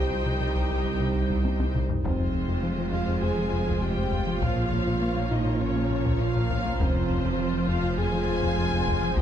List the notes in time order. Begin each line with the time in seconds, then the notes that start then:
Already playing: C2 G3 C4 D#4 G4 C5 G5
0.11 C2
0.26 C3
0.40 C3
0.55 C2
0.70 C2
0.85 C2
1.00 C3
1.15 C2
1.30 C2, taiko
1.44 C2, taiko high
1.60 C2, taiko high
1.74 C2, taiko low-mid
1.89 C3, taiko low
2.04 F1 F2 G#3 C4 F4 C5, taiko
2.19 F2
2.33 F2
2.48 F2
2.63 F3
2.78 F3
2.93 F2 F4 F5
3.08 F2
3.22 F2 G#4 G#5
3.38 F3
3.53 F2
3.68 F2, taiko
3.82 F2 G4 G5
3.97 F2
4.12 F2, taiko
4.27 F3
4.41 A#1 A#2 F3 C#4 F4 A#4 C#5 F5, taiko
4.57 A#2
4.72 A#2
4.87 A#2
5.02 A#3
5.17 A#3
5.31 A#2 D#4 D#5
5.46 A#2
5.60 A#2 C#4 C#5
5.76 A#3
5.91 A#2
6.06 A#2, taiko
6.20 A#2 F4 F5
6.36 A#2
6.50 A#2, taiko
6.65 A#3
6.79 F1 F2 C4 F4 C5, taiko
6.95 F2
7.10 F2
7.25 F2
7.39 F3
7.54 F3
7.68 F2 F4 F5
7.83 F2
7.98 F2 G#4 G#5
8.13 F3
8.28 F2
8.43 F2, taiko
8.58 F2
8.73 F2
8.88 F2, taiko
9.02 F3
9.17 C2 G3 D#4 G4, taiko